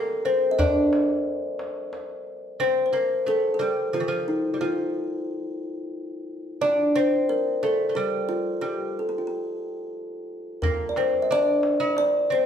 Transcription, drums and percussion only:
0.59 tombak dum
0.93 tombak tek
1.10 tombak ka
1.59 tombak tek
1.93 tombak tek
10.63 tombak dum
10.96 tombak tek
11.13 tombak ka
11.63 tombak tek
11.97 tombak tek

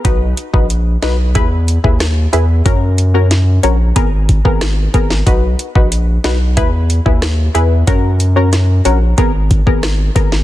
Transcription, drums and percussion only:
0.05 kick, closed hi-hat
0.37 closed hi-hat
0.54 kick
0.70 closed hi-hat
1.03 snare, closed hi-hat
1.35 kick, closed hi-hat
1.68 closed hi-hat
1.84 kick
2.00 cross-stick, snare, closed hi-hat
2.33 closed hi-hat
2.66 kick, closed hi-hat
2.98 closed hi-hat
3.31 snare, closed hi-hat
3.63 closed hi-hat
3.96 kick, closed hi-hat
4.29 kick, closed hi-hat
4.45 kick
4.61 cross-stick, snare, closed hi-hat
4.94 kick, closed hi-hat
5.10 snare
5.27 kick, closed hi-hat
5.59 closed hi-hat
5.75 kick
5.92 closed hi-hat
6.24 snare, closed hi-hat
6.57 kick, closed hi-hat
6.90 closed hi-hat
7.06 kick
7.22 cross-stick, snare, closed hi-hat
7.55 closed hi-hat
7.87 kick, closed hi-hat
8.20 closed hi-hat
8.53 cross-stick, snare, closed hi-hat
8.85 closed hi-hat
9.18 kick, closed hi-hat
9.51 kick, closed hi-hat
9.67 kick
9.83 cross-stick, snare, closed hi-hat
10.16 kick, closed hi-hat
10.32 snare

